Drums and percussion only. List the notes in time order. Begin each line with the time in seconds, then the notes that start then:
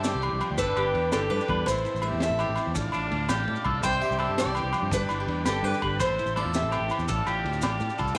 0.04 snare, ride, maracas
0.22 ride, low agogo
0.40 ride, low agogo, maracas
0.58 kick, ride, maracas
0.76 ride, low agogo, maracas
0.95 ride
1.12 snare, ride, low agogo, maracas
1.31 ride
1.40 maracas
1.48 kick, ride, low agogo
1.66 kick, ride, low agogo, maracas
1.77 maracas
1.85 ride, maracas
1.96 maracas
2.02 ride, low agogo
2.20 snare, ride, maracas
2.39 ride, low agogo, maracas
2.56 ride, low agogo, maracas
2.75 kick, ride, maracas
2.92 ride, low agogo, maracas
3.11 ride
3.29 snare, ride, low agogo, maracas
3.48 ride
3.56 maracas
3.64 kick, ride, low agogo
3.83 kick, ride, low agogo, maracas
3.93 maracas
4.01 ride, maracas
4.12 maracas
4.19 ride, low agogo
4.38 snare, ride, maracas
4.55 ride, low agogo, maracas
4.73 ride, low agogo, maracas
4.91 kick, ride, maracas
5.09 ride, low agogo, maracas
5.28 ride
5.46 snare, ride, low agogo, maracas
5.64 ride
5.74 maracas
5.82 kick, ride, low agogo
6.00 kick, ride, low agogo, maracas
6.19 ride, maracas
6.26 maracas
6.36 ride, low agogo, maracas
6.54 snare, ride, maracas
6.72 ride, low agogo, maracas
6.89 ride, low agogo, maracas
6.99 maracas
7.08 kick, ride, maracas
7.27 ride, low agogo, maracas
7.45 ride
7.53 maracas
7.62 snare, ride, low agogo, maracas
7.80 ride, maracas
7.90 maracas
7.98 kick, ride, low agogo, maracas
8.08 maracas